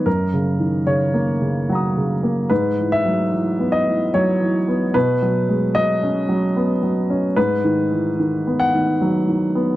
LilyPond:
<<
  \new Staff \with { instrumentName = "Grand piano" } { \time 3/4 \key gis \minor \tempo 4 = 74 << { r2 <fis'' ais'' dis'''>4 | r2. | r2. | r2. | } \\ { ais'4 cis''2 | b'8 e''4 dis''8 cis''4 | b'4 dis''2 | b'4. fis''4. | } >> }
  \new Staff \with { instrumentName = "Grand piano" } { \clef bass \time 3/4 \key gis \minor \tuplet 3/2 { fis,8 cis8 dis8 cis8 ais8 cis8 fis8 cis8 ais8 } | \tuplet 3/2 { gis,8 e8 fis8 e8 b8 e8 fis8 e8 b8 } | \tuplet 3/2 { b,8 fis8 gis8 fis8 cis'8 fis8 b8 fis8 cis'8 } | \tuplet 3/2 { gis,8 dis8 e8 dis8 b8 dis8 fis8 dis8 b8 } | }
>>